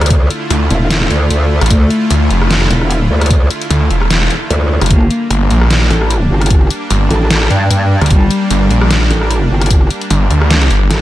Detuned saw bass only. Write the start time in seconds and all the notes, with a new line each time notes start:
0.51 D2
1.61 A1
2.11 D2
2.31 F1
3.71 D2
3.91 E1
4.81 F1
5.30 G1
5.51 A#1
6.91 G1
8.01 D2
8.51 G1
8.71 A#1
10.11 G1
10.31 D2
10.71 G1